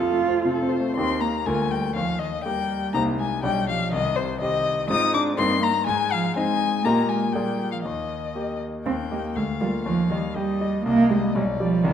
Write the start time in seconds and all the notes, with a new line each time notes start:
Already playing: F2 F4 A4
0.11 A3
0.28 C4
0.45 C3 A4
0.62 C4
0.70 C5
0.80 A3
0.96 D#2 A#3 C4 D#4 G4 C6
1.20 A#3 A#5
1.46 D2 G#3 A#3 F4 A#4 G#5
1.70 G3 G5
1.95 D#2 F3 F5
2.19 D#3 D#5
2.44 G3 A#3 G4 A#4 G5
2.93 C2 A#3 D#4 G4 C5 A#5
3.18 G#3 G#5
3.43 B1 G3 D4 G4 D5 G5
3.67 F3 F5
3.92 C2 D#3 D#5
4.16 C3 C5
4.40 D#3 C4 G4 D#5
4.90 G#2 C4 D#4 F4 D#5 D#6
5.14 D4 D6
5.37 G2 A#3 C4 D#4 D#5 C6
5.61 A#3 A#5
5.86 G#2 G#3 G#5
6.11 F3 F5
6.36 G#3 C4 D#4 D#5 G#5
6.84 A#2 A#3 G4 D#5 A#5
7.09 G#3 G#5
7.33 A#2 G3 A#3 G#4 D5 G5
7.71 F3 F5
7.83 D#2 D#3 D#5
8.35 A#3 G4 D#5
8.86 D#2 C4 G5
9.11 A#3 G4 D#5
9.36 D2 G#3 F5
9.61 G3 A#3 F4 F5
9.84 D#2 F3 F5
10.11 D#3 G3 G4 D#5
10.35 G3 G4 D#5
10.61 G3 G4 D#5
10.85 C2 A#3 D#5
11.10 G3 G#3 G4 D#5
11.35 B1 G3 D5
11.59 F3 G3 G4 D5
11.84 C2 D#3